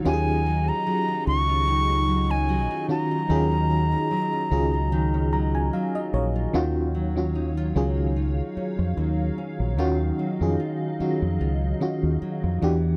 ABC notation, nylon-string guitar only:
X:1
M:4/4
L:1/16
Q:"Swing 16ths" 1/4=74
K:Ebm
V:1 name="Nylon-string guitar"
[E,G,DF] D G, D G, F D F E, D G, D G, F D F | E, D G, D G, F D F E, D G, D G, F D F | [E,F]2 G,2 E F G,2 F2 D2 G,2 D2 | [E,F]2 G,2 F2 G,2 F2 D2 G,2 =E,2 |]